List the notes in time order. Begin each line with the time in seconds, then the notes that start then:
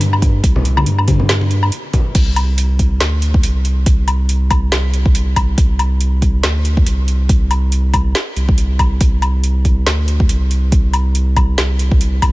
Already playing: G2
0.01 closed hi-hat
0.13 low woodblock
0.22 kick, closed hi-hat
0.43 C2, kick, closed hi-hat
0.56 low conga
0.65 closed hi-hat
0.77 high conga, low woodblock
0.86 G2, closed hi-hat
0.98 low woodblock
1.08 kick, closed hi-hat, muted conga, high conga
1.20 low conga
1.29 snare, closed hi-hat
1.41 muted conga
1.51 closed hi-hat
1.63 low woodblock
1.72 closed hi-hat
1.93 kick, closed hi-hat, muted conga, low conga
2.15 C2, kick, closed hi-hat, crash
2.36 closed hi-hat, low woodblock
2.58 closed hi-hat
2.79 kick, closed hi-hat
3.00 D2, snare, closed hi-hat
3.22 closed hi-hat
3.34 kick
3.43 C2, closed hi-hat
3.65 closed hi-hat
3.86 kick, closed hi-hat
4.08 closed hi-hat, low woodblock
4.29 closed hi-hat
4.51 kick, closed hi-hat, low woodblock
4.72 C2, snare, closed hi-hat
4.94 closed hi-hat
5.06 kick
5.15 closed hi-hat
5.36 C2, kick, closed hi-hat, low woodblock
5.58 C2, kick, closed hi-hat
5.79 closed hi-hat, low woodblock
6.01 closed hi-hat
6.22 kick, closed hi-hat
6.43 D2, snare, closed hi-hat
6.65 closed hi-hat
6.77 kick
6.86 C2, closed hi-hat
7.08 closed hi-hat
7.29 kick, closed hi-hat
7.51 closed hi-hat, low woodblock
7.72 closed hi-hat
7.94 kick, closed hi-hat, low woodblock
8.15 snare, closed hi-hat
8.36 C2, closed hi-hat
8.49 kick
8.58 closed hi-hat
8.79 kick, closed hi-hat, low woodblock
9.01 C2, kick, closed hi-hat
9.22 closed hi-hat, low woodblock
9.44 closed hi-hat
9.65 kick, closed hi-hat
9.86 D2, snare, closed hi-hat
10.08 closed hi-hat
10.20 kick
10.29 C2, closed hi-hat
10.51 closed hi-hat
10.72 kick, closed hi-hat
10.93 closed hi-hat, low woodblock
11.15 closed hi-hat
11.37 kick, closed hi-hat, low woodblock
11.58 C2, snare, closed hi-hat
11.79 closed hi-hat
11.92 kick
12.01 closed hi-hat
12.22 C2, kick, closed hi-hat, low woodblock